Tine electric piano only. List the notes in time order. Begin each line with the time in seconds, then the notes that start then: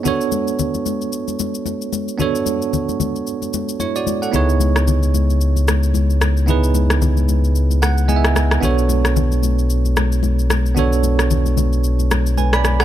0.03 B3 D4 F#4 A4
0.08 C#5
2.18 B3 D4 F#4 A4
2.22 C#5
3.80 E4 C#5
3.96 F#4 D5
4.22 A4 F#5
4.31 B3 D#4 E4 G#4
4.36 C#5
6.46 B3 D#4 E4 G#4
6.50 B4
7.82 F#5
8.08 B3 E4 G#4 D#5 G#5
8.16 E5
8.60 B3 D4 F#4 A4
8.65 C#5
10.75 B3 D4 F#4 A4
10.79 C#5
12.38 B4 G#5
12.53 D5 B5
12.80 A4 F#5